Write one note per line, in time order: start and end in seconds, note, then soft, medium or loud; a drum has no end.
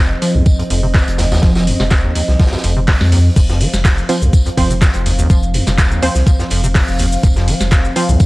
0.00 0.15 F1 medium
0.00 3.32 F3 medium
0.00 3.32 C4 medium
0.00 3.32 C5 medium
0.00 3.35 D#5 medium
0.22 0.36 F3 medium
0.22 open hi-hat loud
0.22 tambourine medium
0.35 0.42 C2 medium
0.35 0.48 D#2 loud
0.46 0.50 F2 medium
0.46 kick loud
0.46 tambourine medium
0.59 0.63 F2 medium
0.59 closed hi-hat soft
0.70 1.00 F1 medium
0.70 0.81 F2 medium
0.70 open hi-hat loud
0.70 tambourine medium
0.83 0.87 C3 medium
0.94 0.99 F2 medium
0.94 kick loud
0.94 snare loud
0.94 clap loud
0.94 tambourine medium
1.07 1.36 F1 loud
1.07 closed hi-hat soft
1.18 1.26 D#2 medium
1.18 snare loud
1.18 open hi-hat loud
1.18 tambourine medium
1.32 1.41 D#2 loud
1.32 snare loud
1.32 tambourine medium
1.42 1.72 F1 medium
1.42 1.69 F3 medium
1.42 kick loud
1.42 snare loud
1.55 snare loud
1.55 tambourine medium
1.67 1.78 F2 medium
1.67 open hi-hat medium
1.67 tambourine medium
1.79 2.09 F1 medium
1.79 1.84 C3 medium
1.79 snare soft
1.79 snare medium
1.90 1.96 F2 medium
1.90 kick loud
1.90 snare loud
1.90 clap loud
1.90 tambourine medium
2.04 2.13 D#2 medium
2.15 2.22 D#2 medium
2.15 open hi-hat loud
2.15 tambourine medium
2.28 2.36 C2 medium
2.28 snare soft
2.39 2.44 F3 medium
2.39 kick loud
2.39 snare medium
2.39 tambourine medium
2.46 snare medium
2.46 tambourine medium
2.52 2.56 F2 medium
2.52 snare medium
2.52 tambourine medium
2.58 snare medium
2.58 tambourine medium
2.64 2.93 F1 medium
2.64 2.74 F2 medium
2.64 open hi-hat loud
2.64 tambourine medium
2.77 2.80 C3 medium
2.87 2.92 F2 medium
2.87 kick loud
2.87 snare loud
2.87 clap loud
2.87 open hi-hat medium
3.01 3.30 F2 medium
3.01 snare medium
3.12 3.19 D#2 medium
3.12 open hi-hat loud
3.12 tambourine medium
3.36 3.66 F1 medium
3.36 3.41 F2 medium
3.36 8.26 F3 medium
3.36 8.26 C4 medium
3.36 8.26 C5 medium
3.36 8.26 F5 medium
3.36 kick loud
3.36 crash loud
3.36 tambourine medium
3.36 cabasa medium
3.49 3.62 F2 medium
3.49 snare medium
3.49 cabasa soft
3.61 3.68 F3 medium
3.61 open hi-hat loud
3.61 tambourine medium
3.73 4.02 F1 medium
3.73 snare medium
3.73 cabasa medium
3.85 kick loud
3.85 snare loud
3.85 clap loud
3.85 tambourine medium
3.85 cabasa medium
3.98 cabasa soft
4.09 4.16 F3 medium
4.09 4.23 F3 medium
4.09 4.16 C4 medium
4.09 4.16 C5 loud
4.09 open hi-hat loud
4.09 tambourine medium
4.22 4.29 C2 medium
4.22 4.35 D#2 loud
4.22 cabasa medium
4.33 4.37 F2 medium
4.33 kick loud
4.33 tambourine medium
4.33 cabasa medium
4.46 4.50 F2 medium
4.46 closed hi-hat soft
4.46 cabasa soft
4.57 4.87 F1 medium
4.57 4.68 F2 medium
4.57 4.68 F3 loud
4.57 4.68 C4 medium
4.57 4.68 C5 loud
4.57 kick medium
4.57 open hi-hat loud
4.57 tambourine medium
4.70 4.74 C3 medium
4.70 cabasa medium
4.81 4.86 F2 medium
4.81 kick loud
4.81 snare loud
4.81 clap loud
4.81 tambourine loud
4.81 cabasa medium
4.94 5.23 F1 medium
4.94 closed hi-hat soft
4.94 cabasa soft
5.06 5.13 D#2 medium
5.06 open hi-hat loud
5.06 tambourine medium
5.19 5.28 D#2 loud
5.19 cabasa medium
5.30 5.60 F1 loud
5.30 5.56 F3 medium
5.30 kick loud
5.30 tambourine medium
5.30 cabasa medium
5.43 cabasa soft
5.54 5.65 F2 medium
5.54 open hi-hat loud
5.54 tambourine medium
5.67 5.96 F1 medium
5.67 5.71 C3 medium
5.67 snare soft
5.67 snare medium
5.67 cabasa medium
5.78 5.83 F2 medium
5.78 kick loud
5.78 snare loud
5.78 clap loud
5.78 tambourine medium
5.78 cabasa medium
5.91 6.01 D#2 medium
5.91 cabasa soft
6.02 6.10 D#2 medium
6.02 6.13 F3 medium
6.02 6.13 C4 medium
6.02 6.14 C5 loud
6.02 open hi-hat loud
6.02 tambourine medium
6.15 6.23 C2 medium
6.15 snare soft
6.15 cabasa medium
6.27 6.31 F3 medium
6.27 kick loud
6.27 tambourine medium
6.27 cabasa medium
6.39 6.43 F2 medium
6.39 snare soft
6.39 cabasa soft
6.50 6.80 F1 medium
6.50 6.62 F2 medium
6.50 open hi-hat loud
6.50 tambourine medium
6.64 6.68 C3 medium
6.64 cabasa medium
6.75 6.79 F2 medium
6.75 kick loud
6.75 snare loud
6.75 clap loud
6.75 open hi-hat medium
6.75 cabasa medium
6.88 7.17 F1 loud
6.88 cabasa soft
6.99 7.06 D#2 medium
6.99 open hi-hat loud
6.99 tambourine medium
7.12 cabasa medium
7.23 7.53 F1 loud
7.23 7.28 F2 medium
7.23 kick loud
7.23 tambourine medium
7.23 cabasa medium
7.36 7.49 F2 medium
7.36 snare medium
7.36 cabasa soft
7.48 7.55 F3 medium
7.48 open hi-hat loud
7.48 tambourine medium
7.61 7.89 F1 medium
7.61 snare medium
7.61 cabasa medium
7.71 kick loud
7.71 snare loud
7.71 clap loud
7.71 tambourine medium
7.71 cabasa medium
7.85 cabasa soft
7.96 8.10 F3 medium
7.96 8.03 F3 medium
7.96 8.03 C4 medium
7.96 8.03 C5 loud
7.96 open hi-hat loud
7.96 tambourine medium
8.09 8.16 C2 medium
8.09 8.22 D#2 loud
8.09 cabasa medium
8.20 8.24 F2 medium
8.20 kick loud
8.20 tambourine medium
8.20 cabasa medium